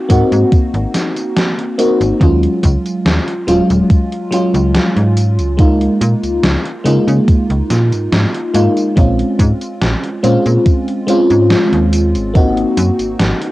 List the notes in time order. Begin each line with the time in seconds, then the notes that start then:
Already playing: A#3 C4 D#4 F#4
0.08 G#2 A#3 C4 D#4 F#4, kick, closed hi-hat, tambourine
0.32 G#2, closed hi-hat, tambourine
0.52 kick, closed hi-hat, tambourine
0.74 G#1, closed hi-hat
0.94 snare, closed hi-hat, tambourine
1.16 closed hi-hat, tambourine
1.37 snare, closed hi-hat, tambourine
1.59 closed hi-hat
1.78 A#3 C4 D#4 F#4, closed hi-hat, tambourine
2.01 G#1, closed hi-hat, tambourine
2.20 D#2 F#3 G#3 C#4 F4, kick, closed hi-hat, tambourine
2.43 closed hi-hat
2.63 C#2, kick, closed hi-hat, tambourine
2.85 closed hi-hat, tambourine
3.05 D#2, snare, closed hi-hat, tambourine
3.27 closed hi-hat
3.47 D#1 F#3 G#3 C#4 F4, closed hi-hat, tambourine
3.70 D#1, closed hi-hat, tambourine
3.90 kick, closed hi-hat, tambourine
4.12 closed hi-hat
4.31 F#3 G#3 C#4 F4, closed hi-hat, tambourine
4.54 C#2, closed hi-hat, tambourine
4.75 snare, closed hi-hat, tambourine
4.96 G#2, closed hi-hat
5.17 closed hi-hat, tambourine
5.39 C#2, closed hi-hat, tambourine
5.57 G#3 A#3 D#4 F4, kick, closed hi-hat, tambourine
5.81 closed hi-hat
6.01 A#2, closed hi-hat, tambourine
6.23 C#2, closed hi-hat, tambourine
6.43 C#2, snare, closed hi-hat, tambourine
6.66 closed hi-hat
6.84 C#3 G#3 A#3 D#4 F4, closed hi-hat, tambourine
7.07 C#3, closed hi-hat, tambourine
7.28 kick, closed hi-hat, tambourine
7.50 C#2, closed hi-hat
7.70 A#2, snare, closed hi-hat, tambourine
7.92 G#2, closed hi-hat, tambourine
8.12 G#2, snare, closed hi-hat, tambourine
8.34 closed hi-hat
8.54 G#2 G#3 A#3 D#4 F4, closed hi-hat, tambourine
8.77 closed hi-hat, tambourine
8.96 A#1 G#3 C4 C#4 F4, kick, closed hi-hat, tambourine
9.19 closed hi-hat
9.39 G#2, kick, closed hi-hat, tambourine
9.61 closed hi-hat, tambourine
9.82 A#1, snare, closed hi-hat, tambourine
10.03 closed hi-hat
10.23 A#2 G#3 C4 C#4 F4, closed hi-hat, tambourine
10.46 A#2, closed hi-hat, tambourine
10.66 kick, closed hi-hat, tambourine
10.88 closed hi-hat
11.07 G#3 C4 C#4 F4, closed hi-hat, tambourine
11.30 G#2, closed hi-hat, tambourine
11.50 snare, closed hi-hat, tambourine
11.72 D#2, closed hi-hat
11.93 closed hi-hat, tambourine
12.15 G#1, closed hi-hat, tambourine
12.34 A#3 C4 D#4 F#4, kick, closed hi-hat, tambourine
12.57 closed hi-hat
12.77 F#2, closed hi-hat, tambourine
12.99 G#1, closed hi-hat, tambourine
13.20 G#1, snare, closed hi-hat, tambourine
13.42 closed hi-hat